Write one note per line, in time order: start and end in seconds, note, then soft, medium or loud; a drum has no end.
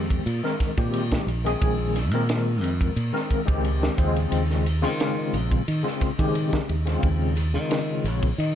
0.00 0.20 F2 medium
0.00 0.20 D#3 medium
0.00 0.21 G#3 medium
0.00 0.21 C4 medium
0.00 0.21 G4 medium
0.10 kick medium
0.10 ride medium
0.26 0.40 A#2 medium
0.26 ride medium
0.43 0.70 D#3 medium
0.43 0.70 G#3 medium
0.43 0.70 C4 medium
0.43 0.70 A#4 medium
0.43 snare soft
0.60 muted fingered electric bass stroke soft
0.60 kick medium
0.60 snare soft
0.60 hi-hat pedal medium
0.60 ride medium
0.77 1.17 A#2 medium
0.77 1.29 D#3 medium
0.77 1.29 G#3 medium
0.77 1.30 C4 medium
0.77 1.30 G4 medium
0.77 kick medium
0.77 ride medium
0.94 ride medium
1.12 kick medium
1.12 snare loud
1.27 1.54 A#1 medium
1.27 hi-hat pedal medium
1.27 ride medium
1.44 1.97 D#3 medium
1.44 1.97 G#3 medium
1.44 1.97 C4 medium
1.44 1.98 G#4 medium
1.44 ride medium
1.62 2.11 A#1 medium
1.62 kick loud
1.62 ride medium
1.96 snare soft
1.96 hi-hat pedal medium
1.96 ride medium
2.11 2.62 A#2 medium
2.11 2.91 D#3 medium
2.11 2.91 G#3 medium
2.11 2.91 C4 medium
2.11 2.92 A#4 medium
2.29 snare medium
2.29 ride medium
2.62 2.89 F2 medium
2.62 hi-hat pedal medium
2.62 ride medium
2.81 kick medium
2.81 ride medium
2.96 3.11 A#2 medium
2.96 ride medium
3.13 3.40 D#3 medium
3.13 3.40 G#3 medium
3.13 3.40 C4 medium
3.13 3.40 A#4 medium
3.13 snare soft
3.31 muted fingered electric bass stroke soft
3.31 kick medium
3.31 hi-hat pedal medium
3.31 ride medium
3.45 3.88 C#2 medium
3.45 3.97 D#3 medium
3.45 3.96 G#3 medium
3.45 3.96 C4 medium
3.45 3.98 G4 medium
3.45 kick medium
3.45 ride medium
3.65 ride medium
3.83 snare loud
3.97 4.25 D#2 medium
3.97 4.65 C#3 medium
3.97 4.66 G#3 medium
3.97 4.66 C4 medium
3.97 4.66 F4 medium
3.97 kick medium
3.97 hi-hat pedal medium
3.97 ride medium
4.16 ride medium
4.32 4.85 D#2 medium
4.32 ride medium
4.51 snare soft
4.66 hi-hat pedal medium
4.66 ride medium
4.81 5.60 C#3 medium
4.81 5.35 D#3 medium
4.81 5.61 G#3 medium
4.81 5.61 C4 medium
4.81 5.61 F4 loud
4.81 ride medium
5.00 snare loud
5.00 ride medium
5.33 5.60 A#1 medium
5.33 hi-hat pedal medium
5.33 ride medium
5.51 kick medium
5.51 ride medium
5.68 5.82 D#3 loud
5.68 ride medium
5.83 6.10 C#3 medium
5.83 6.10 G#3 medium
5.83 6.10 C4 medium
5.83 6.10 F4 medium
5.87 snare soft
6.01 muted fingered electric bass stroke soft
6.01 kick medium
6.01 snare soft
6.01 hi-hat pedal medium
6.01 ride medium
6.18 6.70 C#3 medium
6.18 6.58 D#3 medium
6.18 6.70 G#3 medium
6.18 6.71 C4 medium
6.18 6.71 G4 medium
6.18 kick medium
6.18 ride medium
6.35 ride medium
6.53 kick medium
6.53 snare loud
6.69 6.96 D#2 medium
6.69 hi-hat pedal medium
6.69 ride medium
6.85 7.37 C#3 medium
6.85 7.38 G#3 medium
6.85 7.38 C4 medium
6.85 7.38 F4 medium
6.85 snare soft
6.85 ride medium
7.03 7.56 D#2 medium
7.03 kick loud
7.03 ride medium
7.37 hi-hat pedal medium
7.37 ride medium
7.54 8.32 C#3 medium
7.54 8.06 D#3 medium
7.54 8.32 G#3 medium
7.54 8.32 C4 medium
7.54 8.32 F4 medium
7.71 snare loud
7.71 ride medium
8.04 8.31 A#1 medium
8.04 8.37 C#5 medium
8.04 hi-hat pedal medium
8.04 ride medium
8.23 kick medium
8.23 ride medium
8.38 8.52 D#3 medium
8.38 8.55 D#5 medium
8.38 ride medium